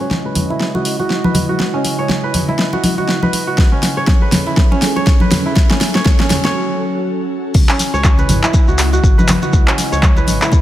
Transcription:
0.00 0.31 C#2 medium
0.00 3.54 C#3 medium
0.00 3.54 G#3 medium
0.00 1.50 C#4 medium
0.00 3.54 E4 medium
0.00 0.74 F#4 medium
0.00 0.25 B4 medium
0.00 1.15 C#5 medium
0.00 3.54 D#5 medium
0.11 snare soft
0.11 muted conga soft
0.11 high conga medium
0.25 1.24 B4 medium
0.35 0.46 G#1 medium
0.35 open hi-hat medium
0.35 high conga medium
0.35 low conga medium
0.50 2.07 E4 medium
0.50 muted conga soft
0.60 snare soft
0.75 1.06 C#2 medium
0.75 0.99 F#4 medium
0.75 muted conga medium
0.85 open hi-hat medium
0.99 1.49 F#4 medium
0.99 muted conga soft
1.10 1.43 G#1 medium
1.10 snare medium
1.24 2.23 B4 medium
1.24 high conga medium
1.35 open hi-hat medium
1.35 muted conga medium
1.35 high conga medium
1.35 low conga medium
1.49 2.73 F#4 medium
1.59 1.70 C#2 medium
1.59 snare medium
1.59 muted conga soft
1.74 3.48 C#4 medium
1.85 open hi-hat medium
1.85 muted conga soft
1.99 2.30 C#2 loud
1.99 3.13 C#5 loud
2.09 snare medium
2.09 muted conga soft
2.09 high conga medium
2.23 3.22 B4 medium
2.34 2.45 G#1 medium
2.34 open hi-hat medium
2.34 high conga medium
2.34 low conga medium
2.48 4.05 E4 medium
2.48 muted conga soft
2.59 snare medium
2.73 3.04 C#2 medium
2.73 2.98 F#4 medium
2.73 muted conga medium
2.84 open hi-hat medium
2.84 high conga loud
2.98 3.47 F#4 medium
2.98 muted conga soft
3.08 3.41 G#1 medium
3.08 snare medium
3.23 4.21 B4 medium
3.23 high conga medium
3.33 open hi-hat medium
3.33 muted conga soft
3.47 4.94 F#4 medium
3.58 3.69 C#2 loud
3.58 7.51 F#3 medium
3.58 7.51 C#4 medium
3.58 5.54 G#4 medium
3.58 7.51 A4 medium
3.58 kick loud
3.58 snare medium
3.58 muted conga soft
3.72 4.71 C#4 medium
3.83 snare medium
3.83 open hi-hat medium
3.83 muted conga soft
3.97 4.28 C#2 loud
3.97 4.96 C#5 medium
4.07 kick loud
4.07 snare medium
4.07 muted conga soft
4.07 high conga medium
4.22 5.21 B4 medium
4.32 4.43 G#1 loud
4.32 snare medium
4.32 open hi-hat medium
4.32 high conga medium
4.32 low conga medium
4.46 5.45 E4 medium
4.46 muted conga soft
4.57 kick loud
4.57 snare medium
4.71 5.02 C#2 loud
4.71 5.70 C#4 medium
4.71 muted conga medium
4.82 snare medium
4.82 open hi-hat medium
4.96 5.95 C#5 medium
4.96 muted conga soft
5.07 5.40 G#1 loud
5.07 kick loud
5.07 snare medium
5.20 6.44 B4 medium
5.20 high conga loud
5.31 snare medium
5.31 open hi-hat medium
5.31 muted conga medium
5.31 high conga medium
5.31 low conga medium
5.46 7.02 E4 medium
5.56 5.67 C#2 medium
5.56 7.53 F#4 medium
5.56 kick loud
5.56 snare medium
5.56 muted conga medium
5.70 6.20 C#4 medium
5.70 snare medium
5.81 snare loud
5.81 open hi-hat medium
5.81 muted conga soft
5.95 6.26 C#2 loud
5.95 6.44 C#5 loud
5.95 snare medium
6.05 kick loud
6.05 snare loud
6.05 muted conga medium
6.05 high conga medium
6.20 7.69 C#4 medium
6.20 snare medium
6.30 6.41 G#1 loud
6.30 snare loud
6.30 open hi-hat medium
6.30 high conga medium
6.30 low conga medium
6.45 7.59 C#5 loud
6.45 snare medium
6.45 muted conga soft
7.54 7.65 C#2 medium
7.54 10.62 C#3 medium
7.54 10.62 G#3 medium
7.54 10.62 E4 medium
7.54 10.62 D#5 medium
7.54 kick loud
7.54 crash loud
7.54 maracas medium
7.68 9.43 C#4 medium
7.68 clap medium
7.68 maracas soft
7.79 open hi-hat medium
7.79 muted conga soft
7.79 maracas loud
7.94 8.25 C#2 loud
7.94 9.08 C#5 loud
7.94 maracas soft
8.04 kick loud
8.04 clap medium
8.04 high conga medium
8.04 maracas medium
8.18 9.17 B4 medium
8.18 muted conga soft
8.18 maracas soft
8.29 8.40 G#1 loud
8.29 open hi-hat medium
8.29 high conga medium
8.29 low conga medium
8.29 maracas medium
8.43 10.00 E4 medium
8.43 clap medium
8.43 maracas soft
8.53 kick loud
8.53 muted conga soft
8.53 maracas medium
8.68 8.99 C#2 loud
8.68 8.93 F#4 medium
8.68 maracas soft
8.78 clap medium
8.78 open hi-hat loud
8.78 maracas medium
8.93 9.42 F#4 medium
8.93 muted conga soft
8.93 maracas soft
9.04 9.36 G#1 medium
9.04 kick loud
9.04 maracas soft
9.18 10.17 B4 medium
9.18 high conga loud
9.18 maracas soft
9.28 clap medium
9.28 open hi-hat medium
9.28 high conga loud
9.28 low conga medium
9.28 maracas loud
9.42 10.62 F#4 medium
9.42 muted conga medium
9.42 maracas soft
9.53 9.64 C#2 medium
9.53 kick loud
9.53 maracas medium
9.67 10.62 C#4 medium
9.67 clap loud
9.67 maracas soft
9.78 open hi-hat loud
9.78 muted conga medium
9.78 maracas medium
9.92 10.23 C#2 loud
9.92 10.62 C#5 loud
9.92 maracas soft
10.03 kick loud
10.03 clap medium
10.03 high conga medium
10.03 maracas medium
10.16 10.62 B4 medium
10.16 muted conga soft
10.16 maracas soft
10.27 10.38 G#1 loud
10.27 open hi-hat medium
10.27 high conga medium
10.27 maracas medium
10.42 10.62 E4 medium
10.42 clap medium
10.42 maracas soft
10.52 kick loud
10.52 muted conga medium
10.52 maracas medium

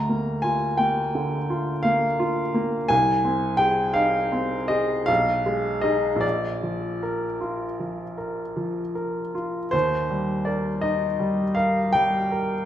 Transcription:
0.00 2.87 D2 soft
0.00 0.43 A#5 medium
0.09 0.65 A#3 soft
0.42 1.01 F4 soft
0.42 0.78 G#5 medium
0.77 1.36 A#3 soft
0.77 1.85 G5 medium
1.15 1.72 D3 soft
1.50 2.06 F4 soft
1.83 2.41 A#3 soft
1.83 2.90 F5 medium
2.20 2.77 F4 soft
2.54 2.91 A#3 soft
2.88 5.04 C2 medium
2.88 3.59 G#5 medium
3.25 3.81 C4 soft
3.57 4.17 G#4 soft
3.57 3.94 G5 medium
3.94 4.55 D#4 soft
3.94 4.70 F5 medium
4.32 4.93 C4 soft
4.68 5.08 G#4 soft
4.68 5.07 D#5 medium
5.06 6.19 B1 medium
5.06 5.82 F5 medium
5.46 6.07 G#3 soft
5.81 6.19 D#4 soft
5.81 6.19 G#4 soft
5.81 6.22 D#5 medium
6.16 9.66 A#1 soft
6.21 9.34 D5 medium
6.63 7.25 F3 soft
7.03 7.64 A#4 soft
7.41 8.02 F4 soft
7.80 8.42 F3 soft
8.18 8.80 A#4 soft
8.57 9.19 F3 soft
8.95 9.58 A#4 soft
9.35 9.73 F4 soft
9.71 12.65 D#2 soft
9.71 10.46 C5 medium
10.10 10.69 G3 soft
10.45 11.05 A#4 soft
10.45 10.83 D5 soft
10.81 11.42 D#4 soft
10.81 11.56 D#5 medium
11.19 11.79 G3 soft
11.55 12.17 A#4 soft
11.55 11.93 F5 medium
11.93 12.54 G3 soft
11.93 12.65 G5 medium
12.32 12.65 A#4 soft

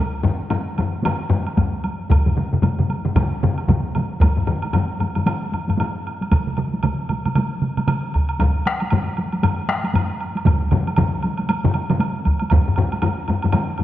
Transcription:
0.24 taiko low-mid loud
0.24 taiko high medium
0.41 taiko high soft
0.51 taiko low-mid loud
0.51 taiko high medium
0.51 high woodblock soft
0.66 taiko high soft
0.78 taiko low-mid medium
0.78 taiko high medium
0.78 high woodblock soft
0.94 taiko high soft
1.03 taiko low-mid loud
1.03 taiko high medium
1.03 high woodblock medium
1.21 taiko high soft
1.31 taiko low-mid medium
1.31 taiko high soft
1.46 taiko high soft
1.46 high woodblock soft
1.57 taiko medium
1.57 taiko low-mid medium
1.57 taiko high medium
1.57 high woodblock soft
1.73 taiko high soft
1.84 taiko high medium
1.84 high woodblock soft
2.00 taiko high soft
2.10 taiko medium
2.10 taiko low-mid medium
2.10 taiko mid medium
2.10 taiko high medium
2.10 high woodblock soft
2.26 taiko low-mid medium
2.26 taiko mid medium
2.26 taiko high soft
2.37 taiko low-mid medium
2.37 taiko mid medium
2.37 taiko high soft
2.53 taiko low-mid medium
2.53 taiko mid medium
2.53 taiko high soft
2.62 taiko low-mid medium
2.62 taiko mid medium
2.62 taiko high medium
2.62 high woodblock soft
2.79 taiko low-mid medium
2.79 taiko mid medium
2.79 taiko high soft
2.90 taiko high medium
2.90 high woodblock soft
3.05 taiko low-mid medium
3.05 taiko mid medium
3.05 taiko high soft
3.15 taiko medium
3.15 taiko low-mid medium
3.15 taiko mid medium
3.15 taiko high medium
3.15 high woodblock soft
3.34 taiko high soft
3.43 taiko low-mid medium
3.43 taiko mid loud
3.43 taiko high soft
3.58 taiko high soft
3.58 high woodblock soft
3.68 taiko medium
3.68 taiko low-mid medium
3.68 taiko mid medium
3.68 taiko high medium
3.68 high woodblock soft
3.87 taiko high soft
3.95 taiko low-mid medium
3.95 taiko mid medium
3.95 taiko high medium
3.95 high woodblock soft
4.13 taiko high soft
4.21 taiko medium
4.21 taiko low-mid medium
4.21 taiko high medium
4.21 high woodblock soft
4.37 taiko low-mid medium
4.47 taiko low-mid medium
4.47 taiko high soft
4.47 high woodblock soft
4.62 taiko high soft
4.62 high woodblock soft
4.73 taiko low-mid medium
4.73 taiko high medium
4.73 high woodblock soft
5.00 taiko low-mid medium
5.00 taiko high medium
5.00 high woodblock soft
5.15 taiko low-mid medium
5.15 taiko high soft
5.15 high woodblock soft
5.26 taiko low-mid medium
5.26 taiko high medium
5.26 high woodblock soft
5.52 taiko low-mid medium
5.52 taiko high soft
5.52 high woodblock soft
5.68 taiko low-mid medium
5.68 taiko high medium
5.68 high woodblock soft
5.78 taiko low-mid medium
5.78 taiko high medium
5.78 high woodblock soft
6.07 high woodblock soft
6.21 taiko high soft
6.21 high woodblock soft
6.31 taiko medium
6.31 taiko mid medium
6.31 taiko high medium
6.31 high woodblock soft
6.47 taiko mid medium
6.57 taiko mid medium
6.57 taiko high soft
6.57 high woodblock soft
6.74 taiko high medium
6.83 taiko medium
6.83 taiko mid medium
6.83 taiko high medium
6.83 high woodblock soft
7.09 taiko mid medium
7.09 taiko high medium
7.09 high woodblock soft
7.25 taiko mid medium
7.25 taiko high soft
7.25 high woodblock soft
7.35 taiko mid medium
7.35 taiko high medium
7.35 high woodblock soft
7.62 taiko mid medium
7.62 taiko high soft
7.77 taiko mid medium
7.77 taiko high medium
7.77 high woodblock soft
7.87 taiko mid medium
7.87 taiko high medium
7.87 high woodblock medium
8.14 taiko medium
8.14 high woodblock soft
8.29 high woodblock soft
8.40 taiko medium
8.40 taiko low-mid medium
8.40 taiko high medium
8.40 high woodblock soft
8.66 taiko rim medium
8.66 taiko high soft
8.66 high woodblock soft
8.80 taiko high soft
8.80 high woodblock soft
8.91 taiko low-mid medium
8.91 taiko high medium
8.91 high woodblock medium
9.17 taiko high medium
9.17 high woodblock soft
9.33 taiko high soft
9.33 high woodblock soft
9.43 taiko low-mid medium
9.43 taiko high medium
9.43 high woodblock medium
9.69 taiko rim medium
9.69 taiko high soft
9.69 high woodblock soft
9.84 taiko high medium
9.84 high woodblock soft
9.94 taiko low-mid medium
9.94 taiko high medium
9.94 high woodblock soft
10.21 high woodblock soft
10.36 taiko high soft
10.36 high woodblock soft
10.45 taiko medium
10.45 taiko low-mid medium
10.45 taiko mid medium
10.45 taiko high medium
10.45 high woodblock medium
10.71 taiko low-mid medium
10.71 taiko mid medium
10.71 taiko high medium
10.71 high woodblock soft
10.87 taiko high medium
10.87 high woodblock soft
10.96 taiko medium
10.96 taiko low-mid loud
10.96 taiko mid medium
10.96 taiko high medium
10.96 high woodblock medium
11.23 taiko high medium
11.23 high woodblock soft
11.38 taiko high soft
11.38 high woodblock soft
11.49 taiko high medium
11.49 high woodblock medium
11.64 taiko low-mid medium
11.64 taiko mid medium
11.74 taiko high medium
11.74 high woodblock soft
11.90 taiko low-mid medium
11.90 taiko mid medium
11.90 taiko high medium
11.90 high woodblock soft
12.00 taiko high medium
12.00 high woodblock soft
12.25 taiko medium
12.25 taiko high soft
12.25 high woodblock soft
12.39 taiko high medium
12.39 high woodblock soft
12.50 taiko loud
12.50 taiko low-mid medium
12.50 taiko high medium
12.50 high woodblock soft
12.68 taiko low-mid medium
12.76 taiko low-mid medium
12.76 taiko high soft
12.76 high woodblock soft
12.92 taiko high soft
12.92 high woodblock soft
13.02 taiko low-mid loud
13.02 taiko high medium
13.02 high woodblock soft
13.28 taiko low-mid medium
13.28 taiko high medium
13.28 high woodblock soft
13.43 taiko low-mid medium
13.43 taiko high soft
13.43 high woodblock soft
13.53 taiko low-mid medium
13.53 taiko high medium
13.53 high woodblock medium
13.78 taiko low-mid medium
13.78 high woodblock soft

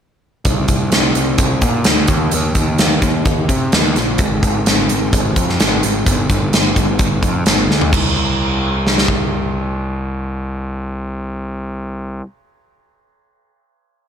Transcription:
0.45 0.67 C2 medium
0.45 kick medium
0.45 closed hi-hat medium
0.68 0.91 C2 medium
0.68 kick medium
0.68 closed hi-hat medium
0.92 1.14 C2 medium
0.92 snare medium
0.92 closed hi-hat medium
1.15 1.37 C2 medium
1.15 closed hi-hat medium
1.38 1.61 C2 medium
1.38 kick medium
1.38 closed hi-hat medium
1.62 1.84 A#2 medium
1.62 kick medium
1.62 closed hi-hat medium
1.84 2.08 D2 medium
1.84 snare loud
1.84 closed hi-hat medium
2.07 2.31 D#2 medium
2.07 kick medium
2.07 closed hi-hat medium
2.31 2.54 D#2 medium
2.31 closed hi-hat medium
2.55 2.77 D#2 medium
2.55 kick medium
2.55 closed hi-hat medium
2.78 3.01 D#2 medium
2.78 snare medium
2.78 closed hi-hat medium
3.02 3.24 D#2 medium
3.02 kick medium
3.02 closed hi-hat medium
3.25 3.48 D#2 medium
3.25 kick loud
3.25 closed hi-hat medium
3.48 3.71 C3 medium
3.48 kick medium
3.48 closed hi-hat medium
3.72 3.95 D#2 medium
3.72 snare medium
3.72 closed hi-hat medium
3.96 4.18 A#1 medium
3.96 snare soft
3.96 closed hi-hat medium
4.18 4.41 G#1 medium
4.18 kick loud
4.18 closed hi-hat medium
4.43 4.65 G#1 medium
4.43 kick medium
4.43 closed hi-hat medium
4.66 4.89 G#1 medium
4.66 snare loud
4.66 closed hi-hat medium
4.89 5.12 G#1 medium
4.89 closed hi-hat medium
5.13 5.35 G#1 medium
5.13 kick loud
5.13 closed hi-hat medium
5.36 5.58 F2 medium
5.36 kick medium
5.36 closed hi-hat medium
5.49 snare soft
5.60 5.82 G#1 medium
5.60 snare loud
5.60 closed hi-hat medium
5.83 6.06 G#1 medium
5.83 closed hi-hat medium
6.06 6.28 G1 medium
6.06 kick loud
6.06 closed hi-hat medium
6.29 6.51 G1 medium
6.29 kick medium
6.29 closed hi-hat medium
6.53 6.75 G1 medium
6.53 snare medium
6.53 closed hi-hat medium
6.76 6.98 G1 medium
6.76 kick medium
6.76 closed hi-hat soft
6.99 7.21 G1 medium
6.99 kick loud
6.99 closed hi-hat medium
7.23 7.45 F2 medium
7.23 kick medium
7.23 closed hi-hat soft
7.46 7.67 G1 medium
7.46 snare medium
7.46 closed hi-hat medium
7.68 7.90 D2 medium
7.68 snare soft
7.81 floor tom medium
7.92 12.21 C2 medium
7.92 kick medium
7.92 crash medium
8.87 snare soft
8.98 snare medium
9.08 kick medium

